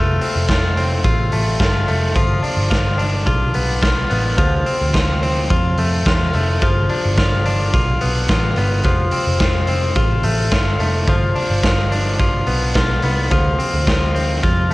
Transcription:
Already playing: F1 F3 A3 F4
0.21 C4, open hi-hat
0.36 F1
0.49 F4, kick, snare, closed hi-hat
0.77 C4, open hi-hat
1.04 A1 F4, kick, closed hi-hat
1.32 A1 A3, open hi-hat
1.60 G1 F4, kick, snare, closed hi-hat
1.88 F1 A3, open hi-hat
2.15 G1 F3 F4, kick, closed hi-hat
2.43 D4, open hi-hat
2.57 G1
2.70 F4, kick, snare, closed hi-hat
2.98 D4, open hi-hat
3.26 B1 F4, kick, closed hi-hat
3.54 B1 B3, open hi-hat
3.82 F4, kick, snare, closed hi-hat
4.10 A1 B3, open hi-hat
4.37 D2 F3 F4, kick, closed hi-hat
4.66 C4, open hi-hat
4.81 D2
4.94 F4, kick, snare, closed hi-hat
5.23 C4, open hi-hat
5.50 F2 F4, kick, closed hi-hat
5.78 F2 A3, open hi-hat
6.05 E2 F4, kick, snare, closed hi-hat
6.33 F1 A3, open hi-hat
6.62 G1 F3 F4, kick, closed hi-hat
6.89 D4, open hi-hat
7.05 G1
7.17 F4, kick, snare, closed hi-hat
7.45 D4, open hi-hat
7.73 B1 F4, kick, closed hi-hat
8.01 B1 B3, open hi-hat
8.28 A1 F4, kick, snare, closed hi-hat
8.56 G1 B3, open hi-hat
8.83 F1 F3 F4, kick, closed hi-hat
9.11 C4, open hi-hat
9.27 F1
9.40 F4, kick, snare, closed hi-hat
9.67 C4, open hi-hat
9.95 A1 F4, kick, closed hi-hat
10.23 A1 A3, open hi-hat
10.51 G1 F4, kick, snare, closed hi-hat
10.80 F1 A3, open hi-hat
11.08 G1 F3 F4, kick, closed hi-hat
11.35 D4, open hi-hat
11.50 G1
11.63 F4, kick, snare, closed hi-hat
11.92 D4, open hi-hat
12.19 F4, kick, closed hi-hat
12.47 B1 B3, open hi-hat
12.74 B1 F4, kick, snare, closed hi-hat
13.02 C2 B3, open hi-hat
13.31 D2 F3 F4, kick, closed hi-hat
13.59 C4, open hi-hat
13.74 D2
13.87 F4, kick, snare, closed hi-hat
14.15 C4, open hi-hat
14.43 F2 F4, kick, closed hi-hat
14.71 A3

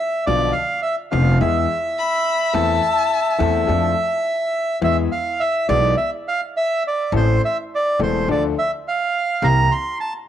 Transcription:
Already playing: E5
0.26 B1 B2 D3 F3 B3 F4 D5
0.52 F5
0.82 E5
1.11 F1 F2 D3 F3 B3 F4 F5
1.40 E2 E3 G#3 B3 G#4 E5
1.98 B5
2.53 E2 E3 A3 C4 A4 A5
3.38 E2 E3 A3 C4 A4
3.67 F2 F3 A3 D4 A4
4.81 E2 E3 G#3 B3 G#4 E5
5.12 F5
5.40 E5
5.69 B1 B2 E3 G#3 B3 G#4 D5
5.97 E5
6.28 F5
6.57 E5
6.88 D5
7.12 A1 A2 E3 A3 C4 A4
7.16 C5
7.45 E5
7.75 D5
7.99 E1 E2 E3 A3 C4 A4 C5
8.28 D2 D3 F3 A3 D4 A4 D5
8.59 E5
8.88 F5
9.42 C2 C3 E3 A#3 C4 G4 A#5
9.72 C6
10.00 A5

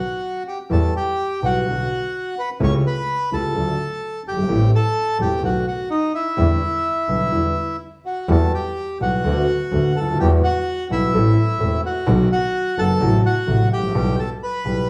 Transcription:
Already playing: F#4 F#5
0.48 G4 G5
0.70 E2 E3 G3 B3 G4 A4 A5
0.96 G4 G5
1.42 B1 B2 E3 G3 B3 F#4 G4 F#5
1.66 B1 B2 D3 F#3 B3 F#4
2.39 B4 B5
2.60 C#2 C#3 E3 A3 C#4 G4 C#5
2.64 C#6
2.86 B4 B5
3.32 C#2 C#3 E3 A3 C#4 G4 A4 A5
3.55 D2 D3 F#3 A3 D4 A4
4.26 G1 G4 G5
4.32 F#1
4.37 G1
4.43 G#1
4.49 A1 A2 E3 A3 C4 G4
4.75 A4 A5
5.19 E1 E2 E3 A3 C4 G4 G5
5.42 B1 B2 D#3 A3 B3 F#4 F#5
5.67 F#4 F#5
5.90 D#4 D#5
6.15 E4 E5
6.37 E2 D3 E3 G3 B3 E4
7.08 B1 B2 D3 G3 B3 E4
7.32 E2 D3 E3 G3 B3 E4
8.06 F#4 F#5
8.29 E2 E3 G3 B3 F#4 A4 A5
8.54 G4 G5
9.00 B1 B2 E3 G3 B3 F#4 F#5
9.24 D2 D3 A3 B3 F#4
9.71 D2 D3 A3 B3 F#4
9.95 D2 A4 A5
10.01 C#2
10.08 D2
10.14 D#2
10.19 E2 E3 G3 B3 F#4 G4 G5
10.43 F#4 F#5
10.90 B1 B2 E3 G3 B3 E4 F#4 E5
11.12 A1 A2 E3 A3 C4 A4
11.60 E1 E2 E3 A3 C4 A4
11.86 F#4 F#5
12.06 B1 B2 D#3 F#3 B3 F#4
12.32 F#4 F#5
12.77 F#1 F#2 D#3 F#3 B3 F#4 A4 A5
13.00 A1 A2 C3 F#3 A3 F#4
13.25 F#4 F#5
13.47 A1 A2 C3 F#3 A3 F#4
13.72 A1 G4 G5
13.77 G#1
13.83 A1
13.88 A#1
13.94 B1 B2 E3 G3 B3 G4
14.20 A4 A5
14.43 B4 B5
14.64 B1 B2 E3 G3 B3 G4

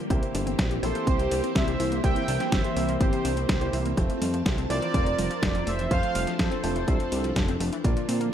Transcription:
0.10 C2 E3 A#3 C4 E4 G4 C5, kick, closed hi-hat
0.22 C3, closed hi-hat
0.34 G1 D4, open hi-hat
0.47 C4, closed hi-hat
0.59 A#1 C4, kick, snare, closed hi-hat
0.71 G4, closed hi-hat
0.83 A#1 A#3 E4 G4 A4 C5, open hi-hat
0.95 A#3, closed hi-hat
1.07 C2 C4 G4 C5, kick, closed hi-hat
1.19 C3, closed hi-hat
1.31 C2 D4, open hi-hat
1.44 C4, closed hi-hat
1.55 C2 C4 C5 E5, kick, snare, closed hi-hat
1.68 G4, closed hi-hat
1.80 C2 E4, open hi-hat
1.92 A#3, closed hi-hat
2.04 C2 A#3 C4 E4 G4 C5 E5 G5, kick, closed hi-hat
2.16 C3, closed hi-hat
2.28 C2 D4, open hi-hat
2.40 C4, snare, closed hi-hat
2.52 G1 C4 C5 E5, kick, snare, closed hi-hat
2.64 G4, closed hi-hat
2.76 C2 A#3 E4 G4 C5, open hi-hat
2.89 A#3, closed hi-hat
3.01 G1 C4 G4 C5, kick, closed hi-hat
3.13 C3, closed hi-hat
3.25 C2 D4, open hi-hat
3.37 C4, closed hi-hat
3.49 C2 C4 G4 C5, kick, snare, closed hi-hat
3.61 A#3 E4 G4 C5, closed hi-hat
3.73 C2 E4, open hi-hat
3.85 A#3, closed hi-hat
3.97 F1 F3 A3 C4 F4 C5 A5, kick, closed hi-hat
4.10 F2, closed hi-hat
4.21 F2 G3, open hi-hat
4.34 F3, closed hi-hat
4.46 C2 F3, kick, snare, closed hi-hat
4.58 C4, closed hi-hat
4.70 C2 F3 A3 C4 F4 A#4 C5 D5, open hi-hat
4.82 E3, closed hi-hat
4.94 F1 F3, kick, closed hi-hat
5.06 F2, closed hi-hat
5.18 F1 G3, open hi-hat
5.30 F3, closed hi-hat
5.42 F1 F3, kick, snare, closed hi-hat
5.55 C4, closed hi-hat
5.67 F1 A3 C5 E5, open hi-hat
5.79 E3, closed hi-hat
5.91 F1 F3 A3 C4 D4 F4 C5 F5, kick, closed hi-hat
6.03 F2, closed hi-hat
6.15 F1 G3, open hi-hat
6.27 F3, snare, closed hi-hat
6.39 F2 F3 A4 C5, kick, snare, closed hi-hat
6.51 C4, closed hi-hat
6.63 F1 A3 C4 F4 C5, open hi-hat
6.76 E3, closed hi-hat
6.88 C2 F3, kick, closed hi-hat
7.00 F2, closed hi-hat
7.12 C2 G3, open hi-hat
7.24 F3, closed hi-hat
7.36 F1 F3, kick, snare, closed hi-hat
7.48 C4, closed hi-hat
7.60 F1 A3, open hi-hat
7.73 E3, closed hi-hat
7.84 A#1 D3 A#3 D4 F4 D5, kick, closed hi-hat
7.97 A#2, closed hi-hat
8.09 A#2 C4, open hi-hat
8.20 A#3, closed hi-hat

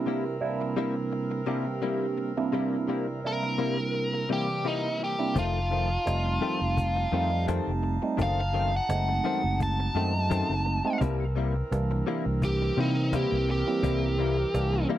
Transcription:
Already playing: C3 E3 G3 A#3 C4 D4 E4 A#4
0.06 C3 G3 A#3 E4
0.25 muted clean electric guitar stroke
0.41 C3 G3 A#3 D4 E4
0.61 muted clean electric guitar stroke
0.77 C3 G3 A#3 E4
0.96 muted clean electric guitar stroke
1.12 muted clean electric guitar stroke
1.31 muted clean electric guitar stroke
1.47 C3 G3 A#3 D4 E4 G4
1.66 muted clean electric guitar stroke
1.82 C3 G3 A#3 E4
2.17 muted clean electric guitar stroke
2.37 C3 G3 A#3 D4 E4, muted clean electric guitar stroke
2.53 C3 G3 A#3 E4
2.88 C3 G3 A#3 E4
3.07 muted clean electric guitar stroke
3.24 C3 G3 A#3 D4 E4 A#4
3.43 muted clean electric guitar stroke
3.58 C3 G3 A#3 E4
3.78 muted clean electric guitar stroke
3.94 muted clean electric guitar stroke
4.14 muted clean electric guitar stroke
4.29 C3 E3 G3 A#3 E4 G4 D5
4.49 muted clean electric guitar stroke
4.64 C3 G3 A#3 D#4 E4
5.00 muted clean electric guitar stroke
5.04 G4
5.19 C3 G3 A#3 D4 E4, muted clean electric guitar stroke
5.35 F1 F2 D#3 A3 C4 D#4 F4 A5, cajon bass
5.70 F2 D#3 A3 C4, cajon slap
5.90 muted clean electric guitar stroke
6.06 F1 G3 A3 C4 D#4, cajon slap
6.25 muted clean electric guitar stroke
6.41 F2 D#3 A3 C4, cajon slap
6.61 F1, muted clean electric guitar stroke
6.77 muted clean electric guitar stroke, cajon bass
6.96 muted clean electric guitar stroke
7.12 F2 D#3 G3 A3 C4 D#4, cajon slap
7.31 muted clean electric guitar stroke
7.47 F2 D#3 A3 C4, cajon bass, cajon slap
7.67 F1
7.83 muted clean electric guitar stroke, cajon slap
8.02 G3 A3 C4 D#4, muted clean electric guitar stroke
8.17 F#1 F#2 D#3 A3 C4 F#4, cajon bass
8.23 F5
8.41 F5
8.53 F#2 D#3 A3 C4, cajon slap
8.73 F#5, muted clean electric guitar stroke
8.89 F#1 G#3 A3 C4 D#4, cajon slap
9.08 muted clean electric guitar stroke
9.24 F#2 D#3 A3 C4, cajon slap
9.44 F#1, muted clean electric guitar stroke
9.60 A5, muted clean electric guitar stroke, cajon bass, cajon slap
9.80 muted clean electric guitar stroke
9.95 F#2 D#3 G#3 A3 C4 D#4, cajon slap
10.14 muted clean electric guitar stroke
10.30 F#2 D#3 A3 C4, cajon bass, cajon slap
10.49 F#1
10.65 muted clean electric guitar stroke, cajon slap
10.84 G#3 A3 C4 D#4, muted clean electric guitar stroke
11.01 C2 C3 E3 G3 A#3 C4 E4 A#4, cajon bass
11.36 C3 G3 A#3 E4, cajon slap
11.56 muted clean electric guitar stroke
11.71 C2 E3 G3 A#3 D4, cajon slap
11.91 muted clean electric guitar stroke, cajon slap
12.07 C3 G3 A#3 E4, cajon slap
12.26 C2, muted clean electric guitar stroke
12.42 G4, muted clean electric guitar stroke, cajon bass
12.62 muted clean electric guitar stroke
12.77 C3 E3 G3 A#3 C4 D#4 E4, cajon slap
12.97 muted clean electric guitar stroke
13.13 C3 G3 A#3 E4 G4, cajon bass, cajon slap
13.32 C2
13.48 G4, muted clean electric guitar stroke, cajon slap
13.67 E3 G3 A#3 C4, muted clean electric guitar stroke
13.83 C2 C3 G3 A#3 E4, cajon bass
14.18 C3 G3 A#3 E4, cajon slap
14.38 muted clean electric guitar stroke
14.54 C2 E3 G3 A#3 D4, cajon slap
14.73 muted clean electric guitar stroke, cajon slap
14.89 C3 G3 A#3 E4, cajon slap

